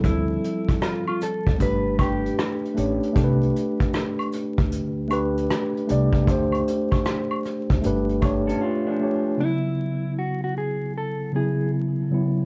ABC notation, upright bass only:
X:1
M:4/4
L:1/16
Q:"Swing 16ths" 1/4=77
K:Dlyd
V:1 name="Upright bass" clef=bass
D,,2 z4 z D,, =G,,,4 z2 A,,, z | =C,,2 z4 z D,,4- D,, z2 C,,2 | D,,2 z4 z D,, =G,,,4 z4 | z16 |]